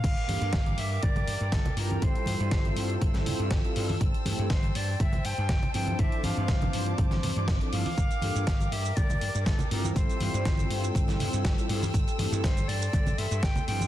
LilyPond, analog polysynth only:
\new Staff \with { instrumentName = "Analog polysynth" } { \time 4/4 \key g \dorian \tempo 4 = 121 r8 <bes d' f' g' a'>8 r2 r8 <g c' e' f' a'>8~ | <g c' e' f' a'>8 <g c' e' f' c''>2~ <g c' e' f' c''>8. <g c' e' f' a'>16 <g c' e' f' a'>16 r16 | r8 <a c' e' g' a'>8 r2 r8 <f c' d' e' a'>8~ | <f c' d' e' a'>8 <e f c' d' c''>2~ <e f c' d' c''>8. <f c' d' e' a'>16 <f c' d' e' a'>16 r16 |
r8 <bes d' f' g' a'>8 r2 r8 <g c' e' f' a'>8~ | <g c' e' f' a'>8 <g c' e' f' c''>2~ <g c' e' f' c''>8. <g c' e' f' a'>16 <g c' e' f' a'>16 r16 | r8 <a c' e' g' a'>8 r2 r8 <f c' d' e' a'>8 | }